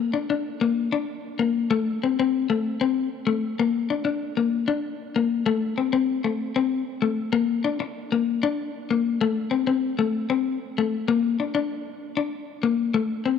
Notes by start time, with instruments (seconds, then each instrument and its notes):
Already playing: clean electric guitar A#3
0.14 clean electric guitar D4
0.30 clean electric guitar D4
0.61 clean electric guitar A#3
0.92 clean electric guitar D4
1.39 clean electric guitar A#3
1.71 clean electric guitar A3
2.04 clean electric guitar C4
2.19 clean electric guitar C4
2.50 clean electric guitar A3
2.81 clean electric guitar C4
3.27 clean electric guitar A3
3.59 clean electric guitar A#3
3.90 clean electric guitar D4
4.05 clean electric guitar D4
4.37 clean electric guitar A#3
4.68 clean electric guitar D4
5.16 clean electric guitar A#3
5.46 clean electric guitar A3
5.78 clean electric guitar C4
5.93 clean electric guitar C4
6.24 clean electric guitar A3
6.56 clean electric guitar C4
7.02 clean electric guitar A3
7.33 clean electric guitar A#3
7.64 clean electric guitar D4
7.80 muted clean electric guitar stroke
8.12 clean electric guitar A#3
8.43 clean electric guitar D4
8.91 clean electric guitar A#3
9.21 clean electric guitar A3
9.51 clean electric guitar C4
9.67 clean electric guitar C4
9.99 clean electric guitar A3
10.30 clean electric guitar C4
10.78 clean electric guitar A3
11.08 clean electric guitar A#3
11.40 clean electric guitar D4
11.55 clean electric guitar D4
12.17 clean electric guitar D4
12.63 clean electric guitar A#3
12.94 clean electric guitar A3
13.26 clean electric guitar C4